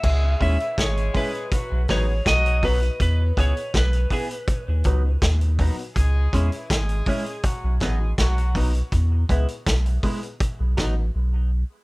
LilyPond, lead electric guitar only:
\new Staff \with { instrumentName = "Lead electric guitar" } { \time 4/4 \key b \mixolydian \tempo 4 = 81 e''8 e''8 cis''8 b'4 cis''8 dis''8 b'8 | b'8 cis''8 b'2 r4 | r1 | r1 | }